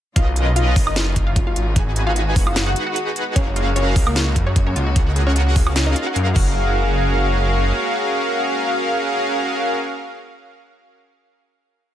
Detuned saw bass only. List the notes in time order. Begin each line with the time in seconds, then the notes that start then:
0.16 B1
0.76 F#1
1.16 F#1
1.56 G#1
2.36 F#1
3.36 F#1
3.96 C#2
4.36 F#2
4.76 C#2
5.56 C#2
6.16 F#2
6.36 F#1